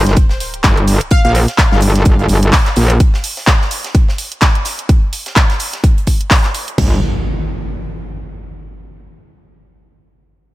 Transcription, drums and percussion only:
0.07 snare, closed hi-hat
0.16 kick, closed hi-hat
0.29 snare
0.40 closed hi-hat, open hi-hat
0.54 closed hi-hat
0.64 kick, snare, clap, closed hi-hat
0.77 closed hi-hat
0.87 snare, closed hi-hat, open hi-hat
1.01 closed hi-hat
1.11 kick, closed hi-hat
1.35 closed hi-hat, open hi-hat
1.48 snare, closed hi-hat
1.58 kick, snare, clap, closed hi-hat
1.72 snare
1.81 closed hi-hat, open hi-hat
1.95 snare, closed hi-hat
2.05 kick, closed hi-hat
2.19 closed hi-hat
2.28 closed hi-hat, open hi-hat
2.43 closed hi-hat
2.53 kick, snare, clap, closed hi-hat, open hi-hat
2.66 snare, clap, closed hi-hat
2.76 closed hi-hat, open hi-hat
2.90 closed hi-hat
3.00 kick, closed hi-hat
3.14 snare
3.24 closed hi-hat, open hi-hat
3.37 snare, open hi-hat
3.47 kick, snare, clap, closed hi-hat
3.61 snare
3.71 closed hi-hat, open hi-hat
3.84 snare, closed hi-hat
3.95 kick, closed hi-hat
4.08 snare
4.18 closed hi-hat, open hi-hat
4.32 closed hi-hat
4.41 kick, snare, clap, closed hi-hat
4.55 closed hi-hat
4.65 snare, closed hi-hat, open hi-hat
4.79 closed hi-hat
4.89 kick, closed hi-hat
5.13 closed hi-hat, open hi-hat
5.26 snare, closed hi-hat
5.36 kick, snare, clap, closed hi-hat
5.50 snare, closed hi-hat
5.60 closed hi-hat, open hi-hat
5.73 snare, closed hi-hat
5.84 kick, closed hi-hat
5.98 closed hi-hat
6.07 kick, closed hi-hat, open hi-hat
6.21 closed hi-hat
6.31 kick, snare, clap, closed hi-hat, open hi-hat
6.44 snare, clap, closed hi-hat
6.54 closed hi-hat, open hi-hat
6.68 closed hi-hat
6.78 kick, floor tom, crash

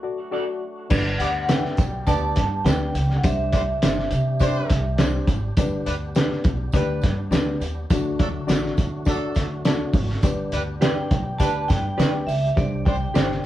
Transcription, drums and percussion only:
0.90 kick, crash, tambourine
1.20 closed hi-hat, tambourine
1.49 snare, closed hi-hat, tambourine
1.65 snare
1.77 kick, closed hi-hat, tambourine
2.07 kick, closed hi-hat, tambourine
2.36 kick, snare, closed hi-hat, tambourine
2.66 snare, closed hi-hat, tambourine
2.95 closed hi-hat, tambourine
3.10 snare
3.23 kick, closed hi-hat, tambourine
3.52 kick, closed hi-hat, tambourine
3.82 snare, closed hi-hat, tambourine
3.98 snare
4.10 closed hi-hat, tambourine
4.39 kick, closed hi-hat, tambourine
4.70 kick, snare, closed hi-hat, tambourine
4.98 snare, closed hi-hat, tambourine
5.27 kick, closed hi-hat, tambourine
5.57 kick, closed hi-hat, tambourine
5.86 closed hi-hat, tambourine
6.15 snare, closed hi-hat, tambourine
6.31 snare
6.44 kick, closed hi-hat, tambourine
6.72 kick, closed hi-hat, tambourine
7.02 kick, snare, closed hi-hat, tambourine
7.32 snare, closed hi-hat, tambourine
7.61 closed hi-hat, tambourine
7.90 kick, closed hi-hat, tambourine
8.19 kick, closed hi-hat, tambourine
8.49 snare, closed hi-hat, tambourine
8.65 snare
8.77 kick, closed hi-hat, tambourine
9.06 kick, closed hi-hat, tambourine
9.35 kick, snare, closed hi-hat, tambourine
9.65 snare, closed hi-hat, tambourine
9.93 kick, open hi-hat, tambourine
10.09 snare
10.23 kick, closed hi-hat, tambourine
10.52 closed hi-hat, tambourine
10.82 snare, closed hi-hat, tambourine
11.11 kick, closed hi-hat, tambourine
11.39 kick, closed hi-hat, tambourine
11.69 kick, snare, closed hi-hat, tambourine
11.99 snare, closed hi-hat, tambourine
12.28 open hi-hat, tambourine
12.57 kick, closed hi-hat, tambourine
12.85 kick, closed hi-hat, tambourine
13.15 snare, closed hi-hat, tambourine
13.31 snare

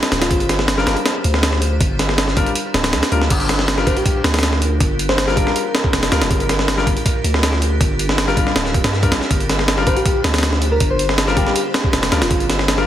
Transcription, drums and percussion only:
0.03 snare, closed hi-hat
0.12 snare, closed hi-hat
0.22 snare, closed hi-hat
0.31 kick, closed hi-hat
0.40 closed hi-hat
0.49 snare, closed hi-hat
0.59 snare
0.68 snare, closed hi-hat
0.78 snare
0.87 snare, closed hi-hat
0.97 closed hi-hat
1.06 snare, closed hi-hat
1.24 closed hi-hat
1.34 snare
1.43 snare, closed hi-hat
1.53 snare
1.62 closed hi-hat
1.81 kick, closed hi-hat
1.99 snare, closed hi-hat
2.09 snare
2.18 snare, closed hi-hat
2.28 snare
2.37 kick, closed hi-hat
2.46 closed hi-hat
2.55 closed hi-hat
2.74 snare, closed hi-hat
2.84 snare, closed hi-hat
2.93 snare, closed hi-hat
3.03 snare, closed hi-hat
3.12 closed hi-hat
3.22 snare
3.30 kick, closed hi-hat, crash
3.40 closed hi-hat
3.49 snare, closed hi-hat
3.59 snare
3.68 snare, closed hi-hat
3.78 snare
3.87 kick, closed hi-hat
3.97 closed hi-hat
4.06 kick, closed hi-hat
4.24 snare, closed hi-hat
4.34 snare, closed hi-hat
4.39 snare, closed hi-hat
4.43 snare, closed hi-hat
4.53 snare
4.62 closed hi-hat
4.80 kick, closed hi-hat
4.99 closed hi-hat
5.09 snare
5.18 snare, closed hi-hat
5.28 snare
5.37 kick, closed hi-hat
5.47 snare
5.56 closed hi-hat
5.75 snare, closed hi-hat
5.84 kick
5.93 snare, closed hi-hat
6.03 snare, closed hi-hat
6.12 snare, closed hi-hat
6.22 snare, closed hi-hat
6.31 kick, closed hi-hat
6.40 closed hi-hat
6.49 snare, closed hi-hat
6.59 snare
6.68 snare, closed hi-hat
6.78 snare
6.87 kick, closed hi-hat
6.97 closed hi-hat
7.06 kick, closed hi-hat
7.24 closed hi-hat
7.34 snare
7.43 snare, closed hi-hat
7.53 snare
7.62 closed hi-hat
7.81 kick, closed hi-hat
7.99 closed hi-hat
8.09 snare
8.18 snare, closed hi-hat
8.28 snare
8.37 kick, closed hi-hat
8.47 snare
8.56 snare, closed hi-hat
8.66 snare
8.74 kick, closed hi-hat
8.84 snare, closed hi-hat
8.93 snare
9.03 kick, closed hi-hat
9.12 snare, closed hi-hat
9.22 snare
9.31 kick, closed hi-hat
9.40 closed hi-hat
9.49 snare, closed hi-hat
9.59 snare
9.68 snare, closed hi-hat
9.78 snare
9.87 kick, closed hi-hat
9.97 closed hi-hat
10.06 kick, closed hi-hat
10.24 snare, closed hi-hat
10.34 snare, closed hi-hat
10.38 snare, closed hi-hat
10.43 snare, closed hi-hat
10.53 snare
10.62 closed hi-hat
10.80 kick, closed hi-hat
10.99 closed hi-hat
11.09 snare
11.18 snare, closed hi-hat
11.28 snare
11.37 kick, closed hi-hat
11.47 snare
11.56 closed hi-hat
11.74 snare, closed hi-hat
11.84 kick
11.93 snare, closed hi-hat
12.03 snare, closed hi-hat
12.12 snare, closed hi-hat
12.22 snare, closed hi-hat
12.31 kick, closed hi-hat
12.40 closed hi-hat
12.50 snare, closed hi-hat
12.59 snare
12.68 snare, closed hi-hat
12.78 snare

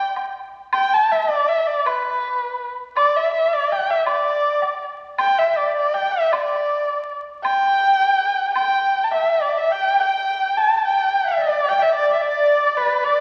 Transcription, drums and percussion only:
0.16 high woodblock, low woodblock
0.73 high woodblock
1.86 high woodblock
2.97 high woodblock
4.06 high woodblock
4.62 low woodblock
5.18 high woodblock
6.33 high woodblock
7.45 high woodblock
8.56 high woodblock
9.12 low woodblock

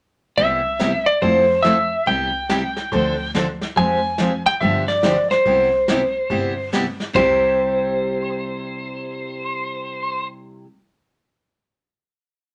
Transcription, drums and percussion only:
0.38 brush sweep, kick
0.80 snare, hi-hat pedal
1.22 brush sweep, kick
1.65 snare, hi-hat pedal
2.07 brush sweep, kick
2.49 snare, hi-hat pedal
2.77 snare
2.92 brush sweep, kick
3.35 snare, hi-hat pedal
3.61 snare
3.76 brush sweep, kick
4.18 snare, hi-hat pedal
4.46 snare
4.61 brush sweep, kick
4.88 snare
5.03 snare, hi-hat pedal
5.31 snare
5.46 brush sweep, kick
5.88 snare, hi-hat pedal
6.30 brush sweep, kick
6.73 snare, hi-hat pedal
7.00 snare
7.15 kick, floor tom, splash

